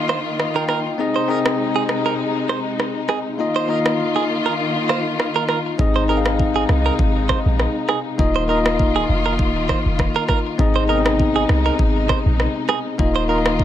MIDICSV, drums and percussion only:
0, 0, Header, 1, 2, 480
1, 0, Start_track
1, 0, Key_signature, -4, "major"
1, 0, Tempo, 600000
1, 794, Time_signature, 4, 2, 24, 8
1, 10914, End_track
2, 0, Start_track
2, 0, Title_t, "Drums"
2, 75, Note_on_c, 9, 37, 85
2, 155, Note_off_c, 9, 37, 0
2, 316, Note_on_c, 9, 37, 94
2, 396, Note_off_c, 9, 37, 0
2, 549, Note_on_c, 9, 37, 87
2, 629, Note_off_c, 9, 37, 0
2, 1165, Note_on_c, 9, 37, 116
2, 1245, Note_off_c, 9, 37, 0
2, 1512, Note_on_c, 9, 37, 84
2, 1592, Note_off_c, 9, 37, 0
2, 1995, Note_on_c, 9, 37, 80
2, 2075, Note_off_c, 9, 37, 0
2, 2237, Note_on_c, 9, 37, 92
2, 2317, Note_off_c, 9, 37, 0
2, 2469, Note_on_c, 9, 37, 88
2, 2549, Note_off_c, 9, 37, 0
2, 3085, Note_on_c, 9, 37, 110
2, 3165, Note_off_c, 9, 37, 0
2, 3915, Note_on_c, 9, 37, 85
2, 3995, Note_off_c, 9, 37, 0
2, 4157, Note_on_c, 9, 37, 92
2, 4237, Note_off_c, 9, 37, 0
2, 4388, Note_on_c, 9, 37, 83
2, 4468, Note_off_c, 9, 37, 0
2, 4634, Note_on_c, 9, 36, 105
2, 4714, Note_off_c, 9, 36, 0
2, 5005, Note_on_c, 9, 37, 115
2, 5085, Note_off_c, 9, 37, 0
2, 5116, Note_on_c, 9, 36, 91
2, 5196, Note_off_c, 9, 36, 0
2, 5353, Note_on_c, 9, 37, 88
2, 5433, Note_off_c, 9, 37, 0
2, 5593, Note_on_c, 9, 36, 88
2, 5673, Note_off_c, 9, 36, 0
2, 5834, Note_on_c, 9, 36, 81
2, 5835, Note_on_c, 9, 37, 83
2, 5914, Note_off_c, 9, 36, 0
2, 5915, Note_off_c, 9, 37, 0
2, 6076, Note_on_c, 9, 37, 93
2, 6156, Note_off_c, 9, 37, 0
2, 6309, Note_on_c, 9, 37, 84
2, 6389, Note_off_c, 9, 37, 0
2, 6553, Note_on_c, 9, 36, 108
2, 6633, Note_off_c, 9, 36, 0
2, 6925, Note_on_c, 9, 37, 119
2, 7005, Note_off_c, 9, 37, 0
2, 7036, Note_on_c, 9, 36, 90
2, 7116, Note_off_c, 9, 36, 0
2, 7513, Note_on_c, 9, 36, 89
2, 7593, Note_off_c, 9, 36, 0
2, 7754, Note_on_c, 9, 36, 80
2, 7754, Note_on_c, 9, 37, 86
2, 7834, Note_off_c, 9, 36, 0
2, 7834, Note_off_c, 9, 37, 0
2, 7992, Note_on_c, 9, 36, 95
2, 7996, Note_on_c, 9, 37, 93
2, 8072, Note_off_c, 9, 36, 0
2, 8076, Note_off_c, 9, 37, 0
2, 8228, Note_on_c, 9, 37, 85
2, 8232, Note_on_c, 9, 36, 90
2, 8308, Note_off_c, 9, 37, 0
2, 8312, Note_off_c, 9, 36, 0
2, 8473, Note_on_c, 9, 36, 107
2, 8553, Note_off_c, 9, 36, 0
2, 8845, Note_on_c, 9, 37, 117
2, 8925, Note_off_c, 9, 37, 0
2, 8956, Note_on_c, 9, 36, 94
2, 9036, Note_off_c, 9, 36, 0
2, 9194, Note_on_c, 9, 37, 89
2, 9274, Note_off_c, 9, 37, 0
2, 9434, Note_on_c, 9, 36, 92
2, 9514, Note_off_c, 9, 36, 0
2, 9675, Note_on_c, 9, 36, 78
2, 9676, Note_on_c, 9, 37, 88
2, 9755, Note_off_c, 9, 36, 0
2, 9756, Note_off_c, 9, 37, 0
2, 9918, Note_on_c, 9, 37, 92
2, 9998, Note_off_c, 9, 37, 0
2, 10149, Note_on_c, 9, 37, 88
2, 10229, Note_off_c, 9, 37, 0
2, 10393, Note_on_c, 9, 36, 106
2, 10473, Note_off_c, 9, 36, 0
2, 10765, Note_on_c, 9, 37, 115
2, 10845, Note_off_c, 9, 37, 0
2, 10876, Note_on_c, 9, 36, 93
2, 10914, Note_off_c, 9, 36, 0
2, 10914, End_track
0, 0, End_of_file